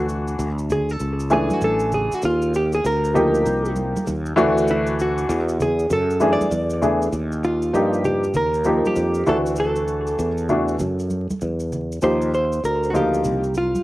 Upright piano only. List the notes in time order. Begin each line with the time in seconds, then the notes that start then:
Already playing: E3 A3 D4 F#4
1.30 E3 A3 D4 G#5
3.14 F3 A#3 D#4 G4
4.36 E3 A3 D4 F#4
6.20 E3 A3 D4 G#4
6.81 E3 A3 D4 G#4
7.73 F3 A#3 D#4 G4
8.65 F3 A#3 D#4 G4
9.26 E3 A3 D4 F#4
10.49 E3 A3 D4 F#4
12.02 F3 A#3 D#4 G4
12.93 F3 A#3 D#4 F4